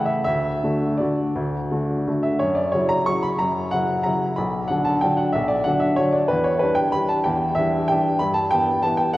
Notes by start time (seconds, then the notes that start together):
Already playing: C#3 A3 E4
0.05 E5
0.24 D2 E5
0.63 D3 A3 F#4
0.98 D3 A3 F#4 D5
1.36 D2
1.71 D3 A3 F#4
2.07 D3 A3 F#4
2.23 E5
2.39 F#2 C#5
2.55 D5
2.72 C#3 F#3 E4 C#5
2.89 A#5
3.06 C#3 F#3 E4 C#6
3.23 B5
3.39 F#2 A#5
3.71 C#3 F#3 E4 F#5
4.03 C#3 F#3 E4 A#5
4.36 B1 B5
4.68 D3 F#3 D4 F#5
4.85 A5
5.01 D3 F#3 D4 G5
5.17 F#5
5.32 B1 E5
5.48 D5
5.64 D3 F#3 D4 F#5
5.80 E5
5.96 D3 F#3 D4 C#5
6.12 D5
6.28 E2 B4
6.44 C#5
6.59 E3 G3 D4 B4
6.75 G5
6.92 E3 G3 D4 B5
7.09 A5
7.24 E2 G5
7.55 E3 G3 D4 E5
7.88 E3 G3 D4 G5
8.19 G2 B5
8.34 A5
8.51 E3 B3 G4 G5
8.83 E3 B3 G4 A5
8.97 G5
9.14 F#5